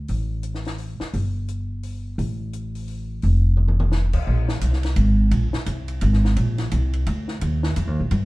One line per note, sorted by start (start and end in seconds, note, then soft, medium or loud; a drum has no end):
0.08 0.97 A1 medium
0.08 open hi-hat soft
0.43 closed hi-hat soft
0.55 snare soft
0.65 snare soft
0.65 open hi-hat soft
0.78 open hi-hat soft
1.00 muted upright bass stroke soft
1.00 snare soft
1.14 2.14 G1 medium
1.14 open hi-hat soft
1.48 closed hi-hat soft
1.83 open hi-hat soft
2.18 3.19 A1 medium
2.18 open hi-hat soft
2.53 closed hi-hat soft
2.75 open hi-hat soft
2.88 open hi-hat soft
3.22 4.11 F1 medium
3.22 open hi-hat soft
3.57 mid tom soft
3.68 mid tom medium
3.80 mid tom medium
3.92 snare soft
4.13 4.26 A1 medium
4.13 kick medium
4.13 crash medium
4.27 4.61 A#1 medium
4.48 snare medium
4.61 4.96 C2 medium
4.61 hi-hat pedal medium
4.61 ride medium
4.73 snare soft
4.83 snare soft
4.83 ride soft
4.96 5.30 G#1 medium
4.96 ride medium
5.31 5.52 A#1 medium
5.31 ride medium
5.53 muted upright bass stroke soft
5.53 snare medium
5.66 6.01 C2 medium
5.66 hi-hat pedal medium
5.66 ride medium
5.88 ride soft
6.01 6.36 G#1 medium
6.01 ride medium
6.13 snare soft
6.25 snare soft
6.36 6.70 A#1 medium
6.36 ride medium
6.58 snare soft
6.58 ride soft
6.71 7.06 C2 medium
6.71 hi-hat pedal medium
6.71 ride medium
6.93 ride soft
7.07 7.40 D2 medium
7.07 ride medium
7.28 snare soft
7.41 7.75 D#2 medium
7.41 ride medium
7.63 snare medium
7.76 7.87 F2 medium
7.76 hi-hat pedal medium
7.76 ride medium
7.87 7.99 D#2 soft
8.00 8.10 A#1 medium
8.11 8.25 G2 medium
8.11 ride medium